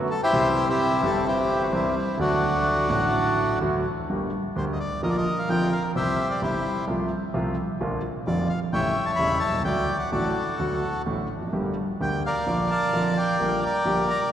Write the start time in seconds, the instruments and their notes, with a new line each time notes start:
0.11 bandoneon A4
0.23 bandoneon E4 G4 C5
0.31 grand piano C2 C3 E3 G3 C4 G4
0.69 bandoneon C4 E4 G4
1.00 grand piano G1 G2 E3 G3 C4 G4
1.05 bandoneon A4
1.26 bandoneon C4 E4 G4
1.63 bandoneon F#4
1.72 grand piano C2 C3 E3 G3 C4 G4, bandoneon E4
1.98 bandoneon E4
2.17 grand piano D2 D3 F#3 A3 F#4, bandoneon A3 D4
2.22 bandoneon F#4
2.88 grand piano A1 A2 D3 F#3 A3
2.92 grand piano F#4
3.61 grand piano D2 D3 F#3 A3 F#4
4.10 grand piano G1 G2 D3 G3 A#3 G4
4.56 grand piano D2 D3 G3 A#3 G4, bandoneon C5
4.73 bandoneon D#5
4.80 bandoneon D5
5.02 grand piano A#1 A#2 D3 F3 A#3 F4, bandoneon A#4 D#5
5.10 bandoneon D5
5.17 bandoneon D#5
5.39 bandoneon F5
5.49 grand piano F1 F2 D3 F3 A#3 F4, bandoneon G5
5.72 bandoneon F5
5.95 grand piano C2 C3 E3 G3 E4, bandoneon G4 C5 E5
6.31 bandoneon D5
6.41 grand piano G1 G2 C3 E3 G3 E4, bandoneon E4 G4 C5
6.88 grand piano C2 C3 F3 A3 F4
7.34 grand piano C2 C3 F3 A3 F4
7.81 grand piano A#1 A#2 D3 F3 A#3 F4
8.27 grand piano F1 F2 D3 F3 A#3 F4, bandoneon D5
8.49 bandoneon F5
8.73 grand piano A1 A2 C#3 G3 A3 E4, bandoneon C#5 E5 G5
9.06 bandoneon A5
9.16 grand piano E1 E2 C#3 G3 A3 E4, bandoneon B5
9.40 bandoneon A5
9.48 grand piano B1
9.54 grand piano C2
9.60 grand piano C#2
9.65 grand piano D2 D3 F#3 A3 F#4, bandoneon D5 G5
9.99 bandoneon F#5
10.12 grand piano A1 A2 D3 F#3 A3 F#4, bandoneon F#4 A4 D5
10.59 grand piano D2 D3 F#3 A3 F#4
11.06 grand piano A1 A2 D3 F#3 A3 F#4
11.36 grand piano E2
11.42 grand piano F2
11.47 grand piano F#2
11.53 grand piano G1 G2 D3 G3 A#3 G4
12.00 grand piano D2 D3 G3 A#3 G4, bandoneon G5
12.26 bandoneon A#4 D5 F5
12.46 grand piano A#1 A#2 D3 F3 A#3 F4
12.70 bandoneon D5 F5 A5
12.93 grand piano F1 F2 D3 F3 A#3 F4
13.17 bandoneon A#4 D5 G5
13.40 grand piano A#1 A#2 D3 G3 A#3 G4
13.63 bandoneon A#4 D5 G5
13.85 grand piano A#1 A#2 D3 G3 A#3 G4
14.10 bandoneon A#5